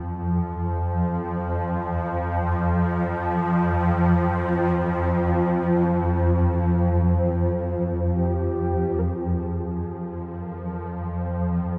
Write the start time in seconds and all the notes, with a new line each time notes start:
Already playing: F2 F3 F4
8.14 G4
8.99 A#4
9.04 F2 F3 G#4
10.41 A#4
10.87 C5